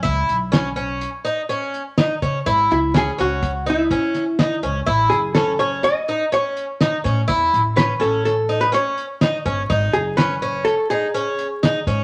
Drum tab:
HH |xxxxxxxxxx|xxxxxxxxxx|xxxxxxxxxx|xxxxxxxxxx|
SD |--o-----o-|--o----oo-|--o-----o-|-oo-o---o-|
BD |o--------o|o---o-o---|o--------o|o--------o|

HH |xxxxxxxxxx|
SD |--o-----o-|
BD |o--------o|